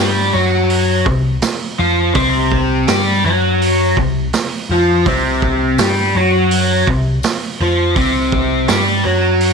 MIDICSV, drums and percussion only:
0, 0, Header, 1, 2, 480
1, 0, Start_track
1, 0, Tempo, 727273
1, 1418, Time_signature, 4, 2, 24, 8
1, 6290, End_track
2, 0, Start_track
2, 0, Title_t, "Drums"
2, 460, Note_on_c, 9, 46, 57
2, 526, Note_off_c, 9, 46, 0
2, 700, Note_on_c, 9, 36, 90
2, 766, Note_off_c, 9, 36, 0
2, 935, Note_on_c, 9, 46, 54
2, 940, Note_on_c, 9, 38, 115
2, 943, Note_on_c, 9, 54, 89
2, 1001, Note_off_c, 9, 46, 0
2, 1006, Note_off_c, 9, 38, 0
2, 1009, Note_off_c, 9, 54, 0
2, 1417, Note_on_c, 9, 46, 53
2, 1420, Note_on_c, 9, 36, 109
2, 1483, Note_off_c, 9, 46, 0
2, 1486, Note_off_c, 9, 36, 0
2, 1660, Note_on_c, 9, 36, 78
2, 1726, Note_off_c, 9, 36, 0
2, 1899, Note_on_c, 9, 46, 58
2, 1903, Note_on_c, 9, 38, 122
2, 1906, Note_on_c, 9, 54, 87
2, 1965, Note_off_c, 9, 46, 0
2, 1969, Note_off_c, 9, 38, 0
2, 1972, Note_off_c, 9, 54, 0
2, 2387, Note_on_c, 9, 46, 51
2, 2453, Note_off_c, 9, 46, 0
2, 2620, Note_on_c, 9, 36, 86
2, 2686, Note_off_c, 9, 36, 0
2, 2858, Note_on_c, 9, 46, 57
2, 2863, Note_on_c, 9, 38, 110
2, 2864, Note_on_c, 9, 54, 89
2, 2924, Note_off_c, 9, 46, 0
2, 2929, Note_off_c, 9, 38, 0
2, 2930, Note_off_c, 9, 54, 0
2, 3340, Note_on_c, 9, 36, 104
2, 3342, Note_on_c, 9, 46, 49
2, 3406, Note_off_c, 9, 36, 0
2, 3408, Note_off_c, 9, 46, 0
2, 3579, Note_on_c, 9, 36, 83
2, 3645, Note_off_c, 9, 36, 0
2, 3817, Note_on_c, 9, 54, 91
2, 3818, Note_on_c, 9, 46, 57
2, 3822, Note_on_c, 9, 38, 119
2, 3883, Note_off_c, 9, 54, 0
2, 3884, Note_off_c, 9, 46, 0
2, 3888, Note_off_c, 9, 38, 0
2, 4296, Note_on_c, 9, 46, 57
2, 4362, Note_off_c, 9, 46, 0
2, 4537, Note_on_c, 9, 36, 89
2, 4603, Note_off_c, 9, 36, 0
2, 4773, Note_on_c, 9, 54, 91
2, 4776, Note_on_c, 9, 46, 56
2, 4781, Note_on_c, 9, 38, 112
2, 4839, Note_off_c, 9, 54, 0
2, 4842, Note_off_c, 9, 46, 0
2, 4847, Note_off_c, 9, 38, 0
2, 5253, Note_on_c, 9, 46, 55
2, 5254, Note_on_c, 9, 36, 106
2, 5319, Note_off_c, 9, 46, 0
2, 5320, Note_off_c, 9, 36, 0
2, 5494, Note_on_c, 9, 36, 88
2, 5560, Note_off_c, 9, 36, 0
2, 5729, Note_on_c, 9, 46, 60
2, 5733, Note_on_c, 9, 38, 113
2, 5738, Note_on_c, 9, 54, 88
2, 5795, Note_off_c, 9, 46, 0
2, 5799, Note_off_c, 9, 38, 0
2, 5804, Note_off_c, 9, 54, 0
2, 6208, Note_on_c, 9, 46, 54
2, 6274, Note_off_c, 9, 46, 0
2, 6290, End_track
0, 0, End_of_file